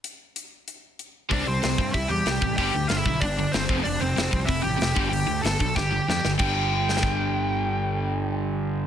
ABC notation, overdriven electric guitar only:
X:1
M:4/4
L:1/8
Q:1/4=189
K:C
V:1 name="Overdriven electric guitar" clef=bass
z8 | [C,G,C] [C,G,] [C,G,] [C,G,] [C,G,] [C,G,] [C,G,] [C,G,] | [G,,D,G,] [G,,D,] [G,,D,] [G,,D,] [G,,D,] [G,,D,] [G,,D,] [F,,C,F,] | [F,,C,] [F,,C,] [F,,C,] [F,,C,] [F,,C,] [F,,C,] [F,,C,] [G,,D,G,] |
[G,,D,] [G,,D,] [G,,D,] [G,,D,] [G,,D,] [G,,D,] [G,,D,] [G,,D,] | [G,,D,G,]8- | [G,,D,G,]8 |]